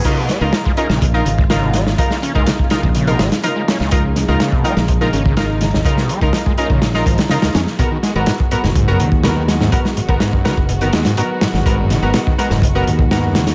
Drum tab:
CC |x---------------|----------------|----------------|----------------|
HH |x-x-x-x-x-x-x-x-|x-x-x-x-xxxxx-x-|x-x-x-x-x-x-x-x-|x-x-x-x-x-xxxxx-|
SD |--o-o--o----o-oo|-o--o-o---oo--oo|--o-o--o----o-oo|-o--o---oo-ooooo|
BD |o----o--o--o----|o--o-o-o--------|o----o--o--o----|o--o-o-o--o-----|

CC |----------------|----------------|----------------|
HH |x-x-x-x-x-x-x-x-|x-x-x-x-xxxxx-x-|x-x-x-x-x-x-x-xx|
SD |--o-o--o----o-oo|-o--o-o---oo--oo|--o-o--o----o-oo|
BD |o----o--o--o----|o--o-o-o--------|o----o--o--o----|